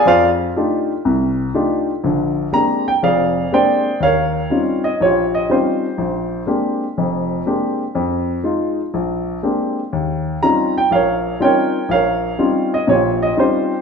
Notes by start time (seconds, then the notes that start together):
0.05 F2 F4 C5 D5 F5
0.56 A3 D4 D#4 F4 G4
1.05 C2 C3
1.54 A3 D4 D#4 F4 G4
2.04 A#1 D3
2.52 G#3 A#3 C4 D4 G4 A#5
2.88 G5
3.03 F1 F2 G#4 D5 F5
3.52 G#3 A#3 C4 D4 G4 C5 D5 G5
4.00 D#2 C#5 F5
4.04 A#4
4.50 G3 C4 C#4 D#4 F4
4.84 D#5
5.01 A#1 F4 G4 C#5
5.35 D#5
5.50 G3 C4 C#4 D#4 F4 G4 C5
5.98 A#1
6.46 G#3 A#3 C4 D4 G4
6.98 F1 F2
7.46 G#3 A#3 C4 D4 G4
7.95 F2
8.43 G#3 D#4 F4
8.94 A#1
9.43 G#3 A#3 C4 D4 G4
9.93 D#2
10.42 G3 C4 C#4 D#4 F4 A#5
10.78 G5
10.91 A#1 A#4 F5
10.95 C#5
11.40 G3 C4 C#4 D#4 F4 G5
11.44 A#4 C#5
11.89 A#1 A#4 F5
11.93 C#5
12.38 G3 C4 C#4 D#4 F4
12.74 D#5
12.87 A#1 A#2 F4 G4 C#5
13.22 D#5
13.37 G3 C4 C#4 D#4 F4 C5
13.41 G4